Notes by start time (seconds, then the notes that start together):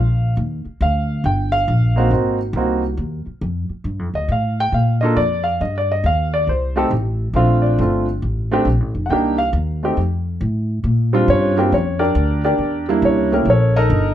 Already playing: A#1 F5
0.37 D#2
0.65 muted upright bass stroke
0.81 D2 F5
1.24 G1 G5
1.52 F5
1.68 A#1
1.96 A#3 C4 D#4 F#4
2.10 G#1 A#3 C4 D#4 F#4
2.53 C2 A#3 C4
2.57 D#4 F#4
2.97 D#2
3.26 muted upright bass stroke
3.41 F2
3.69 muted upright bass stroke
3.84 G2
3.99 F2
4.14 D2 D#5
4.28 A2 F5
4.60 G5
4.72 A#2 F5
5.01 A#3 D4 F4 A4 D#5
5.16 F2 D5
5.44 F5
5.61 G2 D#5
5.78 D5
5.92 D#5
6.04 D#2 F5
6.34 D5
6.47 C2 C5
6.76 A3 C4 D#4 G4 A4
6.91 A1
7.33 A#1 A3 C4 D4 F4 F5
7.62 D5
7.79 G1 A3 C4 D4 F4
8.22 A1
8.51 A3 C4 D4 G4
8.65 A#1
8.80 A1
8.95 F1
9.06 C2 F#5
9.10 A#3 D4 D#4 G4 G5
9.38 F5
9.53 D#2
9.83 A3 C4 D#4 G4
9.97 F2
10.41 A2
10.84 A#2
11.13 G3 C4 D4 F4
11.28 G2 C#4 C#5
11.57 G3 A#3 C4 D4 F4 G4 A#4
11.72 F2 C#4 C#5
11.99 D4 G4 A#4 D5
12.15 D2
12.45 D4 G4 A#4 D5
12.58 E2
12.89 G3 A#3 D4 E4
13.02 C2 C#5
13.06 C#4
13.32 A3 A#3 C#4 E4 G4 A#4
13.45 A#1 A4 A#4
13.50 C#4 C#5
13.76 D#4 A4 A#4 D#5
13.90 G1